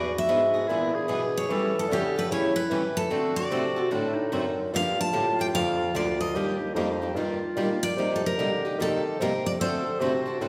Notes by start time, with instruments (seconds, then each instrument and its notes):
Already playing: bassoon E2, clarinet F#4, steel-string acoustic guitar D5
0.14 bassoon E2
0.18 steel-string acoustic guitar E5
0.28 bassoon G#2, steel-string acoustic guitar E3 B3 D4 G#4 B4
0.54 steel-string acoustic guitar B3 D4 G#4
0.67 bassoon A#2, steel-string acoustic guitar E3 B3 D4 G#4, clarinet E4
0.72 steel-string acoustic guitar B4
0.95 clarinet G#4
1.08 bassoon B2, steel-string acoustic guitar E3 B3 D4 G#4 B4
1.37 steel-string acoustic guitar C#5
1.49 bassoon E3, steel-string acoustic guitar E3 G3 A3 C#4 E4 G4 A4, clarinet A4
1.79 steel-string acoustic guitar A4
1.88 bassoon D3, steel-string acoustic guitar E3 G3 A3 C#4 E4 A4
1.93 steel-string acoustic guitar G4
2.16 steel-string acoustic guitar A3 C#4 G4 B4
2.29 bassoon C#3, steel-string acoustic guitar E3 G3 A3 C#4 E4 G4 A4 C#5, clarinet E4
2.56 steel-string acoustic guitar B4
2.70 bassoon E3, steel-string acoustic guitar E3 G3 A3 C#4 E4 G4 A4
2.97 steel-string acoustic guitar A4
3.10 steel-string acoustic guitar D3 A3 C4 F#4 A4, bassoon D3, clarinet F#4
3.36 steel-string acoustic guitar D5
3.51 bassoon C3, steel-string acoustic guitar D3 A3 C4 F#4 A4
3.76 steel-string acoustic guitar C4 F#4 A4
3.91 bassoon A2, steel-string acoustic guitar D3 A3 C4 F#4 A4, clarinet D4
4.14 clarinet D#4
4.32 bassoon F#2, steel-string acoustic guitar D3 A3 C4 F#4 A4
4.72 bassoon G2, steel-string acoustic guitar D3 F3 A#3 D4 G4, clarinet F4
4.76 steel-string acoustic guitar F5
5.01 steel-string acoustic guitar A5
5.12 bassoon A2, steel-string acoustic guitar D3 F3 A#3 D4 G4
5.39 steel-string acoustic guitar A#3 D4 G4 G5
5.53 bassoon F2, steel-string acoustic guitar D3 F3 A#3 D4 G4 F5
5.94 bassoon D2, steel-string acoustic guitar D3 F3 A#3 D4 G4 D5
6.21 steel-string acoustic guitar D#5
6.34 bassoon D#2, steel-string acoustic guitar D#3 G3 A#3 D4 G4, clarinet G4
6.74 bassoon F2, steel-string acoustic guitar D#3 G3 A#3 D4 G4, clarinet D#4
7.02 steel-string acoustic guitar A#3 D4 G4
7.14 bassoon G2, steel-string acoustic guitar D#3 G3 A#3 D4 G4, clarinet F4
7.55 bassoon A#2, steel-string acoustic guitar D#3 G3 A#3 D4 G4
7.83 steel-string acoustic guitar D5
7.96 bassoon C3, steel-string acoustic guitar C3 G3 A#3 D#4 G4, clarinet G4
8.16 steel-string acoustic guitar A4
8.26 steel-string acoustic guitar A#4
8.37 steel-string acoustic guitar C3 G3 A#3 D#4 G4, bassoon D3
8.65 steel-string acoustic guitar A#3 D#4 G4
8.78 steel-string acoustic guitar C3 G3 A#3 D#4 G4 A4, bassoon D#3
9.19 bassoon C3, steel-string acoustic guitar C3 G3 A#3 D#4 G4 A#4
9.46 steel-string acoustic guitar D5
9.59 bassoon D3, steel-string acoustic guitar D3 A3 C4 F#4 A4 C5, clarinet A4
10.00 bassoon C3, steel-string acoustic guitar D3 A3 C4 F#4 A4, clarinet F#4
10.26 steel-string acoustic guitar C4 F#4 A4
10.40 bassoon A2, steel-string acoustic guitar D3 A3 C4 F#4 A4, clarinet D4